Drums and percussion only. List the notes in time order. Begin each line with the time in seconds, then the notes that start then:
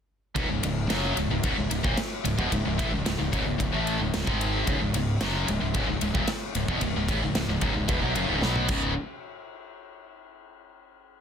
0.36 kick, ride
0.63 ride
0.90 snare, ride
1.17 ride
1.43 kick, ride
1.71 ride
1.84 kick
1.97 snare, ride
2.25 ride
2.39 kick
2.52 kick, ride
2.79 kick, ride
3.06 snare, ride
3.33 kick, ride
3.60 kick, ride
3.87 ride
4.14 snare, ride
4.27 kick
4.41 ride
4.67 kick, ride
4.94 ride
5.21 snare, ride
5.48 ride
5.74 kick, ride
6.01 ride
6.15 kick
6.28 snare, ride
6.55 ride
6.68 kick
6.81 kick, ride
7.08 kick, ride
7.35 snare, ride
7.61 kick, ride
7.88 kick, ride
8.16 ride
8.42 snare
8.56 high tom
8.68 kick, crash